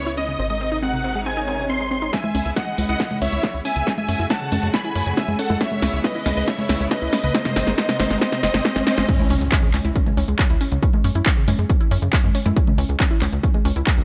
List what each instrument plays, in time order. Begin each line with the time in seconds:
Already playing: analog synth bass C#2, string section C#3 G#3 B3 E4, supersaw synth C#5
0.06 synth arpeggio sound E4
0.17 synth arpeggio sound C#4, supersaw synth D#5
0.28 synth arpeggio sound C#3
0.39 analog synth bass G#1, string section C3 D#3 D#4, synth arpeggio sound C4
0.50 synth arpeggio sound G#3, supersaw synth D#5
0.61 synth arpeggio sound C4
0.72 synth arpeggio sound D#4
0.83 synth arpeggio sound C4, supersaw synth F#5
0.93 synth arpeggio sound C3
1.04 synth arpeggio sound C4
1.15 synth arpeggio sound G#3
1.26 synth arpeggio sound C4, supersaw synth G#5, swell
1.37 synth arpeggio sound D#4
1.48 synth arpeggio sound C4
1.59 synth arpeggio sound C3
1.69 synth arpeggio sound C4, supersaw synth C6
1.80 synth arpeggio sound G#3
1.91 synth arpeggio sound C4, supersaw synth C6
2.02 synth arpeggio sound D#4
2.13 string section C#3 G#3 B3 E4, synth arpeggio sound C#4, supersaw synth E5 G#5, digital synth lead G#5, kick, snare, closed hi-hat, riser
2.24 synth arpeggio sound E4, high conga
2.35 analog synth bass C#2, synth arpeggio sound C#4, open hi-hat
2.46 analog synth bass C#2, synth arpeggio sound C#3, closed hi-hat
2.56 synth arpeggio sound C#4, supersaw synth D#5 F#5, digital synth lead F#5, kick, snare, closed hi-hat
2.67 synth arpeggio sound G#3
2.78 analog synth bass C#2, synth arpeggio sound C#4, open hi-hat, high conga
2.89 analog synth bass C#2, synth arpeggio sound E4, supersaw synth D#5 F#5, digital synth lead F#5, closed hi-hat
3.00 synth arpeggio sound C#4, kick, snare, closed hi-hat
3.11 synth arpeggio sound C#3, closed hi-hat, high conga
3.22 analog synth bass C#2, synth arpeggio sound C#4, supersaw synth C#5 E5, digital synth lead E5, open hi-hat
3.32 analog synth bass C#2, synth arpeggio sound G#3, closed hi-hat
3.43 synth arpeggio sound C#4, kick, snare, closed hi-hat
3.54 analog synth bass C#2, synth arpeggio sound E4, closed hi-hat
3.65 synth arpeggio sound C#4, supersaw synth E5 G#5, digital synth lead G#5, open hi-hat
3.76 analog synth bass C#2, synth arpeggio sound C#3, closed hi-hat
3.87 string section C#3 A3 F#4, synth arpeggio sound C#4, kick, snare, closed hi-hat
3.98 synth arpeggio sound G#3, supersaw synth E5 G#5, digital synth lead G#5, high conga
4.08 analog synth bass F#2, synth arpeggio sound C#4, open hi-hat
4.19 analog synth bass F#2, synth arpeggio sound E4, closed hi-hat
4.30 synth arpeggio sound C#4, supersaw synth F#5 A5, digital synth lead A5, kick, snare, closed hi-hat
4.41 synth arpeggio sound C#3
4.52 analog synth bass F#2, synth arpeggio sound C#4, open hi-hat, high conga
4.63 analog synth bass F#2, synth arpeggio sound G#3, closed hi-hat
4.74 synth arpeggio sound C#4, supersaw synth G#5 B5, digital synth lead B5, kick, snare, closed hi-hat
4.85 synth arpeggio sound E4, closed hi-hat
4.95 analog synth bass F#2, synth arpeggio sound C#4, open hi-hat
5.06 analog synth bass F#2, synth arpeggio sound C#3, closed hi-hat
5.17 synth arpeggio sound C#4, supersaw synth E5 G#5, digital synth lead G#5, kick, snare, closed hi-hat
5.28 analog synth bass F#2, synth arpeggio sound G#3, closed hi-hat, high conga
5.39 synth arpeggio sound C#4, supersaw synth A4 F#5, digital synth lead F#5, open hi-hat
5.50 analog synth bass F#2, synth arpeggio sound E4, closed hi-hat, high conga
5.61 string section C#3 B3 E4, synth arpeggio sound C#4, supersaw synth C#5 E5, digital synth lead E5, kick, snare, closed hi-hat
5.72 synth arpeggio sound C#3, high conga
5.82 analog synth bass C#2, synth arpeggio sound C#4, snare, open hi-hat
5.93 analog synth bass C#2, synth arpeggio sound G#3, closed hi-hat
6.04 synth arpeggio sound C#4, supersaw synth B4 D#5, digital synth lead D#5, kick, snare, closed hi-hat
6.15 synth arpeggio sound E4
6.26 analog synth bass C#2, synth arpeggio sound C#4, snare, open hi-hat, high conga
6.37 analog synth bass C#2, synth arpeggio sound C#3, supersaw synth B4 D#5, digital synth lead D#5, closed hi-hat
6.48 synth arpeggio sound C#4, supersaw synth C#5 E5, digital synth lead E5, kick, snare, closed hi-hat
6.58 synth arpeggio sound C#3, closed hi-hat, high conga
6.69 analog synth bass C#2, synth arpeggio sound C#4, snare, open hi-hat
6.80 analog synth bass C#2, synth arpeggio sound G#3, closed hi-hat
6.91 synth arpeggio sound C#4, supersaw synth B4 D#5, digital synth lead D#5, kick, snare, closed hi-hat
7.02 analog synth bass C#2, synth arpeggio sound E4, closed hi-hat
7.13 synth arpeggio sound C#4, snare, open hi-hat
7.24 analog synth bass C#2, synth arpeggio sound C#3, supersaw synth B4 D#5, digital synth lead D#5, closed hi-hat
7.34 string section C3 D#3 D#4, synth arpeggio sound C4, supersaw synth C5 D#5, digital synth lead D#5, kick, snare, closed hi-hat
7.45 synth arpeggio sound C3, snare, high conga
7.56 analog synth bass G#1, synth arpeggio sound C4, snare, open hi-hat
7.67 analog synth bass G#1, synth arpeggio sound G#3, snare, closed hi-hat
7.78 synth arpeggio sound C4, supersaw synth C5 D#5, digital synth lead D#5, kick, snare, closed hi-hat
7.89 synth arpeggio sound C3, snare, closed hi-hat
8.00 analog synth bass G#1, synth arpeggio sound C4, snare, open hi-hat, high conga
8.11 analog synth bass G#1, synth arpeggio sound G#3, snare, closed hi-hat
8.21 synth arpeggio sound C4, supersaw synth C5 D#5, digital synth lead D#5, kick, snare, closed hi-hat
8.32 synth arpeggio sound C3, snare, closed hi-hat
8.43 analog synth bass F#1, synth arpeggio sound C4, supersaw synth C5 D#5, digital synth lead D#5, snare, open hi-hat
8.54 analog synth bass G#1, synth arpeggio sound C3, snare, closed hi-hat
8.65 synth arpeggio sound C4, supersaw synth C5 D#5, digital synth lead D#5, kick, snare, closed hi-hat
8.76 analog synth bass G#1, synth arpeggio sound C3, snare, closed hi-hat, high conga
8.87 synth arpeggio sound C4, supersaw synth C5 D#5, digital synth lead D#5, snare, open hi-hat
8.98 analog synth bass G#1, synth arpeggio sound C3, snare, closed hi-hat, high conga
9.09 synth arpeggio sound C#4, kick, closed hi-hat, crash, impact
9.19 synth arpeggio sound E4, high conga
9.30 analog synth bass C#2, synth arpeggio sound C#4, open hi-hat
9.41 analog synth bass C#2, synth arpeggio sound C#3, closed hi-hat
9.52 synth arpeggio sound C#4, kick, clap, closed hi-hat
9.63 synth arpeggio sound G#3
9.74 analog synth bass C#2, synth arpeggio sound C#4, clap, open hi-hat, high conga
9.85 analog synth bass C#2, synth arpeggio sound E4, closed hi-hat
9.96 synth arpeggio sound C#4, kick, closed hi-hat
10.06 synth arpeggio sound C#3, closed hi-hat, high conga
10.17 analog synth bass C#2, synth arpeggio sound C#4, open hi-hat
10.28 analog synth bass C#2, synth arpeggio sound G#3, closed hi-hat
10.39 synth arpeggio sound C#4, kick, clap, closed hi-hat
10.50 analog synth bass C#2, synth arpeggio sound E4, closed hi-hat
10.61 synth arpeggio sound C#4, open hi-hat
10.72 analog synth bass C#2, synth arpeggio sound C#3, closed hi-hat
10.83 synth arpeggio sound C#4, kick, closed hi-hat
10.93 synth arpeggio sound G#3, high conga
11.04 analog synth bass F#2, synth arpeggio sound C#4, open hi-hat
11.15 analog synth bass F#2, synth arpeggio sound E4, closed hi-hat
11.26 synth arpeggio sound C#4, kick, clap, closed hi-hat
11.37 synth arpeggio sound C#3
11.48 analog synth bass F#2, synth arpeggio sound C#4, open hi-hat, high conga
11.59 analog synth bass F#2, synth arpeggio sound G#3, closed hi-hat
11.69 synth arpeggio sound C#4, kick, closed hi-hat
11.80 synth arpeggio sound E4, closed hi-hat
11.91 analog synth bass F#2, synth arpeggio sound C#4, open hi-hat
12.02 analog synth bass F#2, synth arpeggio sound C#3, closed hi-hat
12.13 synth arpeggio sound C#4, kick, clap, closed hi-hat
12.24 analog synth bass F#2, synth arpeggio sound G#3, closed hi-hat, high conga
12.35 synth arpeggio sound C#4, open hi-hat
12.46 analog synth bass F#2, synth arpeggio sound E4, closed hi-hat, high conga
12.56 synth arpeggio sound C#4, kick, closed hi-hat
12.67 synth arpeggio sound C#3, high conga
12.78 analog synth bass C#2, synth arpeggio sound C#4, open hi-hat
12.89 analog synth bass C#2, synth arpeggio sound G#3, closed hi-hat
13.00 synth arpeggio sound C#4, kick, clap, closed hi-hat
13.11 synth arpeggio sound E4
13.22 analog synth bass C#2, synth arpeggio sound C#4, clap, open hi-hat, high conga
13.33 analog synth bass C#2, synth arpeggio sound C#3, closed hi-hat
13.43 synth arpeggio sound C#4, kick, closed hi-hat
13.54 synth arpeggio sound G#3, closed hi-hat, high conga
13.65 analog synth bass C#2, synth arpeggio sound C#4, open hi-hat
13.76 analog synth bass C#2, synth arpeggio sound E4, closed hi-hat
13.87 synth arpeggio sound C#4, kick, clap, closed hi-hat
13.98 analog synth bass C#2, synth arpeggio sound C#3, closed hi-hat